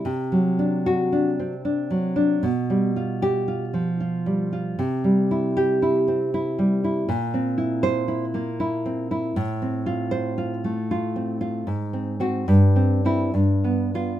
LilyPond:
\new Staff \with { instrumentName = "Nylon-string guitar" } { \time 3/4 \key c \major \tempo 4 = 77 << { r4 fis'8 r4. | r4 g'8 r4. | r4 g'8 r4. | r4 c''8 r4. |
r4 c''8 r4. | \tuplet 3/2 { r4 ges'8 r4 e'8 r4 f'8 } | } \\ { \tuplet 3/2 { c8 fis8 d'8~ d'8 d'8 c'8 d'8 fis8 d'8 } | \tuplet 3/2 { b,8 g8 f'8~ f'8 f'8 f8 f'8 g8 f'8 } | \tuplet 3/2 { c8 g8 e'8~ e'8 e'8 c'8 e'8 g8 e'8 } | \tuplet 3/2 { bes,8 c'8 e'8~ e'8 e'8 bes8 e'8 c'8 e'8 } |
\tuplet 3/2 { a,8 c'8 f'8~ f'8 f'8 a8 f'8 c'8 f'8 } | \tuplet 3/2 { aes,8 c'8 c'8 g,8 c'8 c'8 g,8 b8 b8 } | } >> }